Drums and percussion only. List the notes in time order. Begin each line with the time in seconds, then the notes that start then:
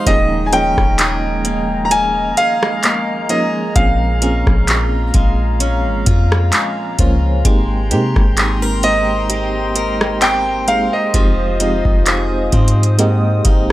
0.07 kick, closed hi-hat
0.53 closed hi-hat
0.78 kick, cross-stick
0.99 clap, closed hi-hat
1.45 closed hi-hat
1.91 closed hi-hat
2.37 closed hi-hat
2.63 cross-stick
2.83 clap, closed hi-hat
3.29 closed hi-hat
3.76 kick, closed hi-hat
4.22 closed hi-hat
4.47 kick, cross-stick
4.68 clap, closed hi-hat
5.14 kick, closed hi-hat
5.60 closed hi-hat
6.06 kick, closed hi-hat
6.32 cross-stick
6.52 clap, closed hi-hat
6.99 kick, closed hi-hat
7.45 kick, closed hi-hat
7.91 closed hi-hat
8.16 kick, cross-stick
8.37 clap, closed hi-hat
8.83 closed hi-hat
9.30 closed hi-hat
9.76 closed hi-hat
10.01 cross-stick
10.22 clap, closed hi-hat
10.68 closed hi-hat
11.14 kick, closed hi-hat
11.60 closed hi-hat
11.85 kick
12.06 clap, closed hi-hat
12.52 kick, closed hi-hat
12.68 closed hi-hat
12.83 closed hi-hat
12.99 closed hi-hat
13.45 kick, closed hi-hat